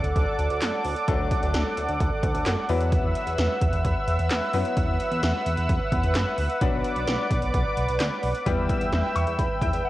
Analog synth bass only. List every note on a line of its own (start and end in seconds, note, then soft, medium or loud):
0.04 0.14 D2 medium
0.16 0.26 D2 loud
0.38 0.48 D2 loud
0.50 0.60 D2 loud
0.61 0.71 F#2 medium
0.85 0.95 D2 loud
1.08 1.18 D2 loud
1.19 1.29 D2 loud
1.42 1.52 D2 loud
1.54 1.64 D2 loud
1.77 1.87 D2 loud
1.88 1.98 D2 loud
2.00 2.10 D2 loud
2.23 2.33 D2 loud
2.35 2.45 D2 loud
2.46 2.56 F#2 loud
2.69 2.99 E2 loud
3.04 3.14 E2 loud
3.27 3.37 E2 loud
3.38 3.48 E2 loud
3.61 3.71 E2 loud
3.73 3.83 E2 loud
3.85 3.95 E2 loud
4.08 4.18 E2 loud
4.19 4.29 E2 medium
4.31 4.41 E2 loud
4.54 4.64 F#2 loud
4.77 4.87 E2 loud
4.88 4.98 E2 loud
5.11 5.21 E2 loud
5.23 5.33 E2 loud
5.46 5.56 E2 loud
5.58 5.68 E2 loud
5.69 5.79 E2 loud
5.92 6.02 E2 loud
6.04 6.14 E2 loud
6.15 6.25 F#2 medium
6.38 6.48 D2 loud
6.61 6.71 B1 loud
6.73 6.83 B1 loud
6.96 7.06 B1 loud
7.07 7.17 B1 loud
7.31 7.41 B1 loud
7.42 7.52 B1 loud
7.54 7.64 B1 loud
7.77 7.87 B1 loud
7.89 7.99 B1 loud
8.00 8.10 D2 medium
8.23 8.33 B1 loud
8.46 8.56 E2 loud
8.58 8.68 E2 medium
8.81 8.91 E2 loud
8.92 9.02 E2 loud
9.15 9.25 E2 loud
9.27 9.37 E2 loud
9.39 9.48 E2 loud
9.61 9.71 E2 loud
9.73 9.83 E2 loud